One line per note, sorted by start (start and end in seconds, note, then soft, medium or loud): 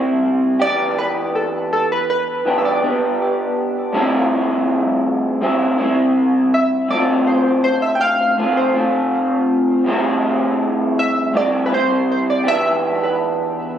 0.00 0.63 G3 soft
0.00 0.61 C4 medium
0.00 0.61 E4 medium
0.60 2.45 B3 soft
0.60 2.45 D4 medium
0.60 2.47 G4 medium
0.60 0.89 D5 loud
0.64 2.45 E3 soft
0.91 0.98 D5 medium
0.98 1.12 B4 loud
1.35 1.72 A4 medium
1.73 1.89 A4 medium
1.92 2.08 B4 medium
2.10 2.59 B4 medium
2.45 2.82 E3 soft
2.45 2.83 B3 medium
2.45 2.82 D4 medium
2.45 2.81 G4 medium
2.58 2.64 E5 medium
2.65 2.99 D5 medium
2.82 3.95 B3 soft
2.82 3.94 D4 soft
2.82 3.96 G4 medium
3.93 5.40 A2 medium
3.93 5.40 G3 medium
3.93 5.42 C4 medium
3.97 5.42 E4 medium
5.41 5.78 A2 medium
5.41 5.79 G3 medium
5.41 5.78 C4 medium
5.41 5.77 E4 medium
5.78 6.89 G3 medium
5.78 6.91 C4 medium
5.78 6.90 E4 medium
6.54 6.88 E5 medium
6.88 8.36 D3 medium
6.88 8.38 A3 medium
6.88 8.38 C4 medium
6.88 7.04 D5 medium
6.92 8.38 F4 medium
7.27 7.63 C5 medium
7.64 7.83 C5 medium
7.82 7.94 E5 medium
7.95 8.02 G5 medium
8.01 8.53 F5 loud
8.37 8.75 D3 medium
8.37 8.75 A3 medium
8.37 8.74 C4 medium
8.37 8.73 F4 medium
8.57 8.91 C5 medium
8.74 9.86 A3 medium
8.74 9.87 C4 medium
8.74 9.85 F4 medium
9.84 11.32 A2 medium
9.84 11.33 G3 medium
9.84 11.34 C4 medium
9.88 11.35 E4 medium
10.99 11.33 E5 medium
11.33 11.71 A2 medium
11.33 11.71 G3 medium
11.33 11.70 C4 medium
11.33 11.69 E4 medium
11.33 11.50 D5 medium
11.66 12.45 E4 medium
11.66 11.72 B4 medium
11.71 12.47 G3 soft
11.71 12.45 C4 medium
11.71 12.10 C5 medium
12.12 12.19 C5 medium
12.30 12.47 D5 medium
12.44 13.78 E3 medium
12.44 13.78 B3 medium
12.44 13.78 D4 medium
12.44 13.78 G4 medium
12.48 13.04 E5 loud
13.03 13.37 B4 medium